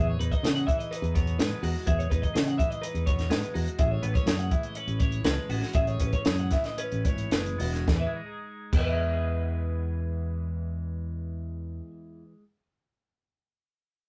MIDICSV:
0, 0, Header, 1, 5, 480
1, 0, Start_track
1, 0, Key_signature, 4, "major"
1, 0, Tempo, 478851
1, 1873, Time_signature, 4, 2, 24, 8
1, 4278, Tempo, 497512
1, 6198, Tempo, 540541
1, 7638, Tempo, 567644
1, 12882, End_track
2, 0, Start_track
2, 0, Title_t, "Clean electric guitar"
2, 0, Program_c, 0, 27
2, 73, Note_on_c, 0, 73, 61
2, 191, Note_off_c, 0, 73, 0
2, 195, Note_on_c, 0, 71, 65
2, 315, Note_off_c, 0, 71, 0
2, 315, Note_on_c, 0, 75, 59
2, 548, Note_off_c, 0, 75, 0
2, 552, Note_on_c, 0, 78, 64
2, 666, Note_off_c, 0, 78, 0
2, 670, Note_on_c, 0, 76, 66
2, 789, Note_off_c, 0, 76, 0
2, 793, Note_on_c, 0, 75, 60
2, 913, Note_off_c, 0, 75, 0
2, 913, Note_on_c, 0, 71, 72
2, 1154, Note_off_c, 0, 71, 0
2, 1154, Note_on_c, 0, 73, 68
2, 1393, Note_off_c, 0, 73, 0
2, 1397, Note_on_c, 0, 71, 67
2, 1633, Note_on_c, 0, 66, 61
2, 1635, Note_off_c, 0, 71, 0
2, 1873, Note_off_c, 0, 66, 0
2, 1880, Note_on_c, 0, 76, 76
2, 1993, Note_on_c, 0, 73, 60
2, 1996, Note_off_c, 0, 76, 0
2, 2101, Note_off_c, 0, 73, 0
2, 2105, Note_on_c, 0, 71, 64
2, 2228, Note_on_c, 0, 75, 63
2, 2229, Note_off_c, 0, 71, 0
2, 2467, Note_off_c, 0, 75, 0
2, 2467, Note_on_c, 0, 78, 62
2, 2585, Note_off_c, 0, 78, 0
2, 2589, Note_on_c, 0, 76, 66
2, 2708, Note_off_c, 0, 76, 0
2, 2712, Note_on_c, 0, 75, 62
2, 2822, Note_on_c, 0, 71, 74
2, 2833, Note_off_c, 0, 75, 0
2, 3068, Note_off_c, 0, 71, 0
2, 3072, Note_on_c, 0, 73, 64
2, 3310, Note_on_c, 0, 71, 74
2, 3313, Note_off_c, 0, 73, 0
2, 3553, Note_off_c, 0, 71, 0
2, 3554, Note_on_c, 0, 66, 64
2, 3795, Note_off_c, 0, 66, 0
2, 3801, Note_on_c, 0, 76, 78
2, 3923, Note_off_c, 0, 76, 0
2, 3923, Note_on_c, 0, 73, 61
2, 4036, Note_on_c, 0, 71, 63
2, 4040, Note_off_c, 0, 73, 0
2, 4157, Note_off_c, 0, 71, 0
2, 4161, Note_on_c, 0, 73, 65
2, 4393, Note_off_c, 0, 73, 0
2, 4397, Note_on_c, 0, 78, 63
2, 4520, Note_off_c, 0, 78, 0
2, 4520, Note_on_c, 0, 76, 62
2, 4632, Note_off_c, 0, 76, 0
2, 4632, Note_on_c, 0, 75, 60
2, 4750, Note_off_c, 0, 75, 0
2, 4750, Note_on_c, 0, 71, 71
2, 4982, Note_off_c, 0, 71, 0
2, 4982, Note_on_c, 0, 73, 69
2, 5218, Note_off_c, 0, 73, 0
2, 5222, Note_on_c, 0, 71, 65
2, 5462, Note_off_c, 0, 71, 0
2, 5464, Note_on_c, 0, 66, 67
2, 5706, Note_off_c, 0, 66, 0
2, 5710, Note_on_c, 0, 76, 84
2, 5829, Note_off_c, 0, 76, 0
2, 5829, Note_on_c, 0, 73, 64
2, 5951, Note_off_c, 0, 73, 0
2, 5957, Note_on_c, 0, 71, 58
2, 6077, Note_off_c, 0, 71, 0
2, 6077, Note_on_c, 0, 73, 61
2, 6314, Note_off_c, 0, 73, 0
2, 6317, Note_on_c, 0, 78, 66
2, 6432, Note_off_c, 0, 78, 0
2, 6432, Note_on_c, 0, 76, 65
2, 6547, Note_off_c, 0, 76, 0
2, 6551, Note_on_c, 0, 75, 57
2, 6666, Note_off_c, 0, 75, 0
2, 6666, Note_on_c, 0, 71, 77
2, 6909, Note_off_c, 0, 71, 0
2, 6909, Note_on_c, 0, 73, 67
2, 7143, Note_off_c, 0, 73, 0
2, 7147, Note_on_c, 0, 71, 68
2, 7391, Note_off_c, 0, 71, 0
2, 7392, Note_on_c, 0, 66, 62
2, 7640, Note_off_c, 0, 66, 0
2, 7670, Note_on_c, 0, 68, 61
2, 7703, Note_on_c, 0, 71, 55
2, 7737, Note_on_c, 0, 76, 57
2, 7798, Note_off_c, 0, 68, 0
2, 7807, Note_off_c, 0, 71, 0
2, 7825, Note_off_c, 0, 76, 0
2, 8387, Note_on_c, 0, 68, 58
2, 8422, Note_on_c, 0, 71, 60
2, 8451, Note_off_c, 0, 68, 0
2, 8455, Note_on_c, 0, 76, 58
2, 11012, Note_off_c, 0, 71, 0
2, 11044, Note_off_c, 0, 76, 0
2, 12882, End_track
3, 0, Start_track
3, 0, Title_t, "Clean electric guitar"
3, 0, Program_c, 1, 27
3, 0, Note_on_c, 1, 40, 65
3, 0, Note_on_c, 1, 68, 53
3, 208, Note_on_c, 1, 63, 52
3, 435, Note_off_c, 1, 68, 0
3, 439, Note_on_c, 1, 68, 51
3, 673, Note_on_c, 1, 52, 57
3, 913, Note_off_c, 1, 63, 0
3, 917, Note_on_c, 1, 63, 54
3, 1143, Note_on_c, 1, 47, 52
3, 1398, Note_on_c, 1, 56, 52
3, 1626, Note_off_c, 1, 63, 0
3, 1638, Note_on_c, 1, 63, 53
3, 1847, Note_off_c, 1, 63, 0
3, 1858, Note_off_c, 1, 40, 0
3, 1868, Note_off_c, 1, 47, 0
3, 1870, Note_on_c, 1, 40, 68
3, 1873, Note_off_c, 1, 68, 0
3, 1877, Note_on_c, 1, 68, 63
3, 2114, Note_on_c, 1, 63, 50
3, 2342, Note_off_c, 1, 68, 0
3, 2346, Note_on_c, 1, 68, 50
3, 2573, Note_off_c, 1, 52, 0
3, 2577, Note_on_c, 1, 52, 53
3, 2813, Note_off_c, 1, 63, 0
3, 2825, Note_on_c, 1, 63, 53
3, 3063, Note_on_c, 1, 47, 51
3, 3303, Note_off_c, 1, 56, 0
3, 3307, Note_on_c, 1, 56, 55
3, 3538, Note_off_c, 1, 63, 0
3, 3550, Note_on_c, 1, 63, 51
3, 3764, Note_off_c, 1, 63, 0
3, 3790, Note_off_c, 1, 40, 0
3, 3790, Note_off_c, 1, 47, 0
3, 3794, Note_on_c, 1, 45, 64
3, 3798, Note_off_c, 1, 68, 0
3, 3802, Note_on_c, 1, 68, 53
3, 4035, Note_on_c, 1, 59, 52
3, 4149, Note_off_c, 1, 59, 0
3, 4149, Note_on_c, 1, 61, 39
3, 4280, Note_off_c, 1, 68, 0
3, 4284, Note_on_c, 1, 68, 53
3, 4509, Note_off_c, 1, 52, 0
3, 4513, Note_on_c, 1, 52, 56
3, 4743, Note_off_c, 1, 61, 0
3, 4759, Note_on_c, 1, 61, 54
3, 4963, Note_off_c, 1, 52, 0
3, 4975, Note_on_c, 1, 52, 52
3, 5218, Note_off_c, 1, 56, 0
3, 5222, Note_on_c, 1, 56, 54
3, 5462, Note_off_c, 1, 61, 0
3, 5466, Note_on_c, 1, 59, 53
3, 5576, Note_off_c, 1, 59, 0
3, 5576, Note_on_c, 1, 61, 38
3, 5675, Note_off_c, 1, 45, 0
3, 5699, Note_on_c, 1, 45, 66
3, 5701, Note_off_c, 1, 61, 0
3, 5703, Note_off_c, 1, 68, 0
3, 5707, Note_on_c, 1, 68, 65
3, 5949, Note_on_c, 1, 61, 44
3, 6190, Note_off_c, 1, 68, 0
3, 6202, Note_on_c, 1, 68, 55
3, 6417, Note_off_c, 1, 52, 0
3, 6417, Note_on_c, 1, 52, 55
3, 6652, Note_off_c, 1, 61, 0
3, 6663, Note_on_c, 1, 61, 53
3, 6885, Note_off_c, 1, 52, 0
3, 6896, Note_on_c, 1, 52, 51
3, 7129, Note_off_c, 1, 56, 0
3, 7140, Note_on_c, 1, 56, 54
3, 7370, Note_off_c, 1, 61, 0
3, 7373, Note_on_c, 1, 59, 48
3, 7503, Note_off_c, 1, 59, 0
3, 7503, Note_on_c, 1, 61, 40
3, 7605, Note_off_c, 1, 52, 0
3, 7606, Note_off_c, 1, 45, 0
3, 7610, Note_off_c, 1, 68, 0
3, 7625, Note_on_c, 1, 40, 56
3, 7634, Note_off_c, 1, 61, 0
3, 7707, Note_on_c, 1, 52, 59
3, 7786, Note_off_c, 1, 56, 0
3, 7796, Note_on_c, 1, 56, 58
3, 7881, Note_on_c, 1, 63, 53
3, 7906, Note_off_c, 1, 40, 0
3, 7906, Note_off_c, 1, 52, 0
3, 7961, Note_on_c, 1, 68, 50
3, 8356, Note_on_c, 1, 40, 60
3, 8382, Note_off_c, 1, 63, 0
3, 8439, Note_on_c, 1, 52, 57
3, 8521, Note_off_c, 1, 56, 0
3, 8525, Note_on_c, 1, 56, 55
3, 8690, Note_off_c, 1, 68, 0
3, 8694, Note_on_c, 1, 68, 49
3, 11316, Note_off_c, 1, 40, 0
3, 11399, Note_off_c, 1, 52, 0
3, 11484, Note_off_c, 1, 56, 0
3, 11653, Note_off_c, 1, 68, 0
3, 12882, End_track
4, 0, Start_track
4, 0, Title_t, "Fingered electric bass"
4, 0, Program_c, 2, 33
4, 0, Note_on_c, 2, 40, 80
4, 182, Note_off_c, 2, 40, 0
4, 199, Note_on_c, 2, 40, 70
4, 309, Note_off_c, 2, 40, 0
4, 433, Note_on_c, 2, 49, 72
4, 655, Note_off_c, 2, 49, 0
4, 1024, Note_on_c, 2, 40, 74
4, 1361, Note_off_c, 2, 40, 0
4, 1389, Note_on_c, 2, 44, 76
4, 1502, Note_off_c, 2, 44, 0
4, 1631, Note_on_c, 2, 40, 73
4, 1743, Note_off_c, 2, 40, 0
4, 1880, Note_on_c, 2, 40, 77
4, 2099, Note_off_c, 2, 40, 0
4, 2119, Note_on_c, 2, 40, 69
4, 2227, Note_off_c, 2, 40, 0
4, 2356, Note_on_c, 2, 49, 76
4, 2577, Note_off_c, 2, 49, 0
4, 2951, Note_on_c, 2, 40, 71
4, 3285, Note_off_c, 2, 40, 0
4, 3309, Note_on_c, 2, 44, 73
4, 3423, Note_off_c, 2, 44, 0
4, 3560, Note_on_c, 2, 40, 74
4, 3669, Note_off_c, 2, 40, 0
4, 3800, Note_on_c, 2, 33, 81
4, 4021, Note_off_c, 2, 33, 0
4, 4035, Note_on_c, 2, 33, 75
4, 4147, Note_off_c, 2, 33, 0
4, 4270, Note_on_c, 2, 42, 81
4, 4490, Note_off_c, 2, 42, 0
4, 4863, Note_on_c, 2, 33, 68
4, 5193, Note_off_c, 2, 33, 0
4, 5222, Note_on_c, 2, 37, 71
4, 5332, Note_off_c, 2, 37, 0
4, 5459, Note_on_c, 2, 33, 72
4, 5573, Note_off_c, 2, 33, 0
4, 5704, Note_on_c, 2, 33, 73
4, 5931, Note_off_c, 2, 33, 0
4, 5952, Note_on_c, 2, 33, 70
4, 6066, Note_off_c, 2, 33, 0
4, 6203, Note_on_c, 2, 42, 79
4, 6415, Note_off_c, 2, 42, 0
4, 6788, Note_on_c, 2, 33, 66
4, 6896, Note_off_c, 2, 33, 0
4, 6904, Note_on_c, 2, 32, 71
4, 7121, Note_off_c, 2, 32, 0
4, 7143, Note_on_c, 2, 30, 61
4, 7364, Note_off_c, 2, 30, 0
4, 7386, Note_on_c, 2, 28, 69
4, 7612, Note_off_c, 2, 28, 0
4, 7638, Note_on_c, 2, 40, 73
4, 7772, Note_off_c, 2, 40, 0
4, 8355, Note_on_c, 2, 40, 78
4, 10945, Note_off_c, 2, 40, 0
4, 12882, End_track
5, 0, Start_track
5, 0, Title_t, "Drums"
5, 206, Note_on_c, 9, 42, 58
5, 306, Note_off_c, 9, 42, 0
5, 318, Note_on_c, 9, 36, 65
5, 324, Note_on_c, 9, 42, 32
5, 419, Note_off_c, 9, 36, 0
5, 424, Note_off_c, 9, 42, 0
5, 446, Note_on_c, 9, 42, 66
5, 454, Note_on_c, 9, 38, 90
5, 546, Note_off_c, 9, 42, 0
5, 554, Note_off_c, 9, 38, 0
5, 568, Note_on_c, 9, 42, 31
5, 668, Note_off_c, 9, 42, 0
5, 681, Note_on_c, 9, 36, 67
5, 687, Note_on_c, 9, 42, 45
5, 781, Note_off_c, 9, 36, 0
5, 787, Note_off_c, 9, 42, 0
5, 805, Note_on_c, 9, 42, 31
5, 906, Note_off_c, 9, 42, 0
5, 929, Note_on_c, 9, 42, 77
5, 1029, Note_off_c, 9, 42, 0
5, 1040, Note_on_c, 9, 42, 35
5, 1140, Note_off_c, 9, 42, 0
5, 1157, Note_on_c, 9, 36, 65
5, 1159, Note_on_c, 9, 42, 47
5, 1258, Note_off_c, 9, 36, 0
5, 1259, Note_off_c, 9, 42, 0
5, 1275, Note_on_c, 9, 42, 30
5, 1376, Note_off_c, 9, 42, 0
5, 1399, Note_on_c, 9, 42, 64
5, 1407, Note_on_c, 9, 38, 90
5, 1499, Note_off_c, 9, 42, 0
5, 1507, Note_off_c, 9, 38, 0
5, 1639, Note_on_c, 9, 46, 64
5, 1739, Note_off_c, 9, 46, 0
5, 1874, Note_on_c, 9, 42, 64
5, 1877, Note_on_c, 9, 36, 84
5, 1974, Note_off_c, 9, 42, 0
5, 1977, Note_off_c, 9, 36, 0
5, 2006, Note_on_c, 9, 42, 33
5, 2106, Note_off_c, 9, 42, 0
5, 2119, Note_on_c, 9, 36, 67
5, 2123, Note_on_c, 9, 42, 48
5, 2219, Note_off_c, 9, 36, 0
5, 2223, Note_off_c, 9, 42, 0
5, 2239, Note_on_c, 9, 36, 68
5, 2242, Note_on_c, 9, 42, 33
5, 2339, Note_off_c, 9, 36, 0
5, 2343, Note_off_c, 9, 42, 0
5, 2361, Note_on_c, 9, 42, 68
5, 2369, Note_on_c, 9, 38, 91
5, 2461, Note_off_c, 9, 42, 0
5, 2469, Note_off_c, 9, 38, 0
5, 2485, Note_on_c, 9, 42, 35
5, 2585, Note_off_c, 9, 42, 0
5, 2600, Note_on_c, 9, 36, 69
5, 2606, Note_on_c, 9, 42, 48
5, 2700, Note_off_c, 9, 36, 0
5, 2706, Note_off_c, 9, 42, 0
5, 2723, Note_on_c, 9, 42, 34
5, 2824, Note_off_c, 9, 42, 0
5, 2841, Note_on_c, 9, 42, 77
5, 2941, Note_off_c, 9, 42, 0
5, 2958, Note_on_c, 9, 42, 35
5, 3058, Note_off_c, 9, 42, 0
5, 3076, Note_on_c, 9, 42, 52
5, 3079, Note_on_c, 9, 36, 69
5, 3177, Note_off_c, 9, 42, 0
5, 3179, Note_off_c, 9, 36, 0
5, 3195, Note_on_c, 9, 42, 36
5, 3203, Note_on_c, 9, 38, 32
5, 3295, Note_off_c, 9, 42, 0
5, 3303, Note_off_c, 9, 38, 0
5, 3315, Note_on_c, 9, 42, 71
5, 3323, Note_on_c, 9, 38, 89
5, 3416, Note_off_c, 9, 42, 0
5, 3424, Note_off_c, 9, 38, 0
5, 3441, Note_on_c, 9, 42, 40
5, 3541, Note_off_c, 9, 42, 0
5, 3562, Note_on_c, 9, 46, 58
5, 3663, Note_off_c, 9, 46, 0
5, 3685, Note_on_c, 9, 42, 39
5, 3785, Note_off_c, 9, 42, 0
5, 3795, Note_on_c, 9, 42, 68
5, 3800, Note_on_c, 9, 36, 89
5, 3896, Note_off_c, 9, 42, 0
5, 3900, Note_off_c, 9, 36, 0
5, 4040, Note_on_c, 9, 42, 53
5, 4140, Note_off_c, 9, 42, 0
5, 4162, Note_on_c, 9, 36, 68
5, 4162, Note_on_c, 9, 42, 34
5, 4262, Note_off_c, 9, 36, 0
5, 4262, Note_off_c, 9, 42, 0
5, 4279, Note_on_c, 9, 42, 72
5, 4287, Note_on_c, 9, 38, 92
5, 4375, Note_off_c, 9, 42, 0
5, 4383, Note_off_c, 9, 38, 0
5, 4397, Note_on_c, 9, 42, 36
5, 4494, Note_off_c, 9, 42, 0
5, 4515, Note_on_c, 9, 42, 51
5, 4517, Note_on_c, 9, 36, 68
5, 4611, Note_off_c, 9, 42, 0
5, 4613, Note_off_c, 9, 36, 0
5, 4631, Note_on_c, 9, 42, 32
5, 4728, Note_off_c, 9, 42, 0
5, 4746, Note_on_c, 9, 42, 73
5, 4842, Note_off_c, 9, 42, 0
5, 4867, Note_on_c, 9, 42, 35
5, 4964, Note_off_c, 9, 42, 0
5, 4982, Note_on_c, 9, 42, 45
5, 4987, Note_on_c, 9, 36, 69
5, 5079, Note_off_c, 9, 42, 0
5, 5083, Note_off_c, 9, 36, 0
5, 5102, Note_on_c, 9, 42, 34
5, 5198, Note_off_c, 9, 42, 0
5, 5221, Note_on_c, 9, 42, 66
5, 5229, Note_on_c, 9, 38, 87
5, 5317, Note_off_c, 9, 42, 0
5, 5325, Note_off_c, 9, 38, 0
5, 5463, Note_on_c, 9, 46, 62
5, 5560, Note_off_c, 9, 46, 0
5, 5591, Note_on_c, 9, 38, 30
5, 5687, Note_off_c, 9, 38, 0
5, 5693, Note_on_c, 9, 42, 66
5, 5705, Note_on_c, 9, 36, 90
5, 5789, Note_off_c, 9, 42, 0
5, 5802, Note_off_c, 9, 36, 0
5, 5827, Note_on_c, 9, 42, 32
5, 5924, Note_off_c, 9, 42, 0
5, 5945, Note_on_c, 9, 42, 56
5, 5951, Note_on_c, 9, 36, 69
5, 6042, Note_off_c, 9, 42, 0
5, 6048, Note_off_c, 9, 36, 0
5, 6072, Note_on_c, 9, 42, 30
5, 6075, Note_on_c, 9, 36, 65
5, 6168, Note_off_c, 9, 42, 0
5, 6172, Note_off_c, 9, 36, 0
5, 6190, Note_on_c, 9, 42, 68
5, 6198, Note_on_c, 9, 38, 89
5, 6280, Note_off_c, 9, 42, 0
5, 6287, Note_off_c, 9, 38, 0
5, 6307, Note_on_c, 9, 42, 31
5, 6396, Note_off_c, 9, 42, 0
5, 6419, Note_on_c, 9, 42, 47
5, 6426, Note_on_c, 9, 38, 29
5, 6428, Note_on_c, 9, 36, 65
5, 6508, Note_off_c, 9, 42, 0
5, 6515, Note_off_c, 9, 38, 0
5, 6517, Note_off_c, 9, 36, 0
5, 6537, Note_on_c, 9, 42, 31
5, 6544, Note_on_c, 9, 38, 27
5, 6626, Note_off_c, 9, 42, 0
5, 6633, Note_off_c, 9, 38, 0
5, 6662, Note_on_c, 9, 42, 70
5, 6751, Note_off_c, 9, 42, 0
5, 6783, Note_on_c, 9, 42, 36
5, 6872, Note_off_c, 9, 42, 0
5, 6900, Note_on_c, 9, 42, 51
5, 6903, Note_on_c, 9, 36, 63
5, 6989, Note_off_c, 9, 42, 0
5, 6992, Note_off_c, 9, 36, 0
5, 7017, Note_on_c, 9, 42, 34
5, 7106, Note_off_c, 9, 42, 0
5, 7136, Note_on_c, 9, 42, 65
5, 7143, Note_on_c, 9, 38, 83
5, 7225, Note_off_c, 9, 42, 0
5, 7232, Note_off_c, 9, 38, 0
5, 7265, Note_on_c, 9, 42, 39
5, 7353, Note_off_c, 9, 42, 0
5, 7387, Note_on_c, 9, 46, 61
5, 7476, Note_off_c, 9, 46, 0
5, 7513, Note_on_c, 9, 42, 35
5, 7520, Note_on_c, 9, 38, 29
5, 7602, Note_off_c, 9, 42, 0
5, 7609, Note_off_c, 9, 38, 0
5, 7635, Note_on_c, 9, 36, 89
5, 7638, Note_on_c, 9, 38, 76
5, 7720, Note_off_c, 9, 36, 0
5, 7722, Note_off_c, 9, 38, 0
5, 8355, Note_on_c, 9, 36, 83
5, 8358, Note_on_c, 9, 49, 68
5, 8440, Note_off_c, 9, 36, 0
5, 8442, Note_off_c, 9, 49, 0
5, 12882, End_track
0, 0, End_of_file